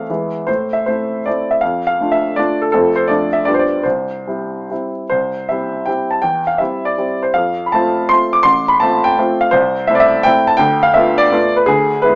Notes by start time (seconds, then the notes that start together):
Already playing: E2 A3 C4 A4 E5 F5
0.10 E2 G#3 B3 E4
0.47 A2 C5
0.73 E5
0.86 A3 C4 E4 C5
1.26 A3 C4 E4 D5
1.51 E5
1.61 F2 F5
1.87 F5
2.01 A3 D4 F4
2.12 E5
2.36 A3 D4 F4 D5
2.62 A4
2.72 F2 A3 C4 F4 A4
2.96 C5
3.08 F2 A3 D4 F4 D5
3.33 E5
3.45 G2 G3 B3 F4 D5
3.54 C5
3.59 D5
3.83 C2 C5
4.27 G3 C4 E4
4.70 G3 C4 E4
5.10 C2 C5
5.49 G3 C4 E4 E5
5.86 G3 C4 E4 G5
6.11 A5
6.22 E2 G5
6.47 F5
6.58 G3 C4 E4 E5
6.85 D5
6.98 G3 C4 E4
7.23 C5
7.34 F2 F5
7.66 B5
7.72 A3 C4 F4 A5
8.09 A3 C4 F4 C6
8.33 D6
8.43 A1 C6
8.68 B5
8.80 A3 C4 F4 A5
9.04 G5
9.18 A3 C4 F4
9.41 F5
9.51 C2 C5
9.87 A3 C4 E4 E5
9.95 D5
10.00 E5
10.23 A3 C4 E4 G5
10.47 A5
10.57 D2 G5
10.83 F5
10.94 A3 B3 F4 E5
11.18 D5
11.32 A3 B3 F4
11.56 B4
11.66 D2 G#4
12.02 G#3 B3 E4 B4